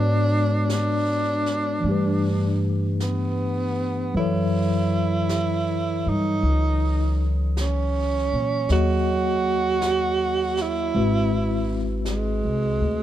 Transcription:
Already playing: G#2 G#3 B3 D4 F#4 B4 C#5
0.69 D4, brush sweep, snare, hi-hat pedal
1.46 snare
1.80 G2 E3 A3
1.85 D4 G4, brush sweep
1.92 B4
3.00 B3, brush sweep, snare, hi-hat pedal
4.14 F#2 E3 F#3 E4 A4 B4, brush sweep
4.19 C#5
5.29 brush sweep, snare, hi-hat pedal
6.06 G2 D#4
6.43 C#2, brush sweep
7.57 brush sweep, snare, hi-hat pedal
7.61 C#4
8.33 A#2
8.69 D#2 F#3 A#3 F#4 G#4 C#5 D#5, brush sweep, snare
9.82 brush sweep, snare, hi-hat pedal
10.57 snare
10.62 E4
10.94 G#1 G#3 C4 E4 F#4 B4, brush sweep
12.05 brush sweep, snare, hi-hat pedal
12.10 G#3
12.44 C2
12.81 D2

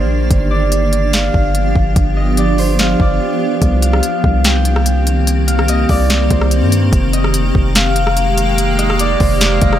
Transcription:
Already playing: D#3 A#3 D4 G4 C5 D5 F5
0.00 A#1
0.31 G1 F3 B3 G4, kick, closed hi-hat
0.51 D5
0.72 closed hi-hat
0.93 closed hi-hat
1.13 F5, snare, closed hi-hat
1.34 G1, kick
1.55 closed hi-hat
1.76 G1, kick
1.96 G1, kick, closed hi-hat
2.17 D#5
2.37 D5, closed hi-hat
2.58 C5, open hi-hat
2.79 F5, snare, closed hi-hat
3.00 G1 D5, kick
3.62 C2 D#3 A#3 C4 G4, kick, closed hi-hat
3.82 F5, closed hi-hat
3.93 cross-stick
4.03 closed hi-hat
4.24 C2, kick
4.44 G5, snare, closed hi-hat
4.65 closed hi-hat
4.76 cross-stick
4.86 closed hi-hat
5.07 closed hi-hat
5.27 closed hi-hat
5.47 F5, closed hi-hat
5.59 cross-stick
5.68 D#5, closed hi-hat
5.89 C2 D5, kick, open hi-hat
6.10 snare, closed hi-hat
6.30 C2 C5, kick, closed hi-hat
6.41 cross-stick
6.51 closed hi-hat
6.62 G2
6.72 closed hi-hat
6.92 F1 G#3 A#3, kick, closed hi-hat
7.13 D#5, closed hi-hat
7.24 cross-stick
7.34 closed hi-hat
7.55 F1, kick
7.75 F5, snare, closed hi-hat
7.96 closed hi-hat
8.07 cross-stick
8.17 closed hi-hat
8.38 closed hi-hat
8.58 closed hi-hat
8.79 D#5, closed hi-hat
8.90 cross-stick
8.99 D5, closed hi-hat
9.20 F1 C5, kick, open hi-hat
9.40 F5, snare, closed hi-hat
9.61 F1 D#5, kick, closed hi-hat
9.73 cross-stick

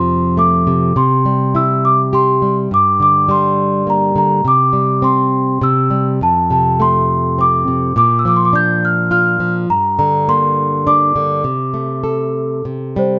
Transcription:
Already playing: F2 C3 F3 C6
0.37 A3 D6
0.67 C3
0.96 C3 C6
1.25 G3
1.55 E4 E6
1.85 D6
2.13 G4 C6
2.42 G3
2.71 G2 D6
3.00 D3 D6
3.29 G3 C6
3.87 A#3 A#5
4.16 D3 A#5
4.45 C3 D6
4.73 G3
5.02 C4 C6
5.62 C3 E6
5.90 G3
6.21 F2 A5
6.50 C3 A5
6.80 A3 C6
7.38 C4 D6
7.68 C3
7.96 A#2 D6
8.19 E6
8.25 F3 D6
8.36 C6
8.45 D6
8.53 D4 G6
8.85 F6
9.11 F4 F6
9.40 F3
9.70 G2 A#5
9.99 D3 A#5
10.28 A#3 C6
10.87 D4 D6
11.16 D3
11.44 C3
11.74 A3
12.04 A4
12.65 C3
12.96 G3 C5

